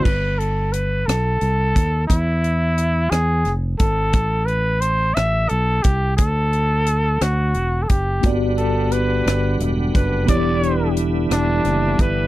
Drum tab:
CC |x-----|------|------|------|
HH |-xxxxx|xxxxxx|xxxxxx|xxxxxx|
SD |---r--|---rr-|---r--|---r--|
BD |o----o|o----o|o----o|o----o|

CC |------|------|
HH |xxxxxx|xxxxxx|
SD |---r--|---rr-|
BD |o----o|o----o|